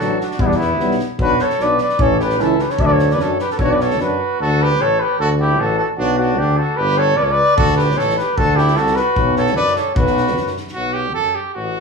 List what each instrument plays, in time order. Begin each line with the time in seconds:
Already playing: trumpet F#4, cornet A4
0.00 tuba A1, euphonium F#3, trombone D4, snare
0.20 trumpet D4, cornet F#4, snare
0.31 snare
0.38 tuba E2, euphonium G3, trombone B3, trumpet B3, cornet E4, kick
0.46 trumpet B3, cornet D4
0.51 trumpet B3, snare
0.56 cornet E4
0.61 snare
0.79 tuba B1, euphonium G3, trombone B3, snare
0.91 snare
0.99 snare
1.18 tuba B1, euphonium F#3, trombone D4, trumpet F#4, kick
1.23 cornet B4
1.39 trumpet A4, cornet C#5, snare
1.50 snare
1.59 tuba B1, euphonium F#3, trombone D4, trumpet B4, cornet D5, snare
1.78 cornet D5, snare
1.82 trumpet B4
1.89 snare
1.98 tuba A1, euphonium E3, trombone C#4, trumpet A4, cornet C#5, kick
2.20 trumpet G4, cornet B4, snare
2.30 snare
2.39 tuba C#2, euphonium E3, trombone C#4, trumpet E4, cornet A4, snare
2.59 trumpet G4, cornet B4, snare
2.70 trumpet A4, cornet C#5, snare
2.79 tuba D2, euphonium F#3, trombone D4, cornet E5, kick
2.83 trumpet B4 C#5, cornet D5
2.91 trumpet A4, cornet C#5
2.99 snare
3.10 trumpet B4, cornet D5, snare
3.19 tuba F#2, euphonium F#3, trombone D4, cornet C#5, snare
3.23 trumpet A4
3.39 trumpet G4, cornet B4, snare
3.50 trumpet G4, cornet A4 B4, snare
3.57 tuba B1, euphonium F#3, trombone D4, trumpet F#4, cornet A4 C#5, kick
3.64 trumpet F#4
3.71 trumpet B4, cornet D5
3.80 trumpet A4, cornet C#5, snare
3.90 snare
3.98 tuba F#2, euphonium F#3, trombone D4, cornet B4, snare
4.02 trumpet F#4
4.40 tuba D2, trumpet F#4, cornet A4
4.62 trumpet G4, cornet B4
4.80 tuba A1, trumpet A4, cornet C#5
5.00 trumpet G4, cornet B4
5.19 tuba D2, trumpet F#4, cornet A4
5.40 trumpet E4, cornet G4
5.58 tuba A1, trumpet F#4, cornet A4
5.79 trumpet F#4, cornet A4
5.98 tuba B1, trumpet D4, cornet F#4
6.18 trumpet D4, cornet F#4
6.39 tuba D2, trumpet D4, cornet G4
6.57 trumpet F#4, cornet A4
6.77 tuba G1, trumpet G4, cornet B4
6.98 trumpet A4, cornet C#5
7.17 tuba C#2, trumpet B4, cornet D5
7.23 trumpet A4, cornet C#5
7.30 trumpet B4, cornet D5
7.57 tuba D2, trumpet F#4, cornet A4, kick
7.77 trumpet G4, cornet B4, snare
7.90 snare
7.97 tuba A1, trumpet A4, cornet C#5, snare
8.10 snare
8.17 trumpet G4, cornet B4, snare
8.37 tuba D2, trumpet F#4, cornet A4, kick
8.56 trumpet E4, cornet G4, snare
8.67 snare
8.76 tuba C2, trumpet F#4, cornet A4, snare
8.86 snare
8.96 trumpet F#4, cornet B4, snare
9.16 tuba B1, kick
9.36 trumpet A4, cornet C#5, snare
9.46 snare
9.56 tuba F#2, trumpet B4, cornet D5, snare
9.67 snare
9.75 trumpet A4, cornet C#5, snare
9.94 tuba B1, trumpet F#4, cornet B4, kick
10.06 snare
10.17 snare
10.27 snare
10.37 tuba F#2, snare
10.47 snare
10.57 snare
10.68 snare
10.74 tuba B1, trumpet F#4
10.94 trumpet G4
11.14 tuba F#2, trumpet A4
11.35 trumpet G4
11.54 tuba A1, trumpet F#4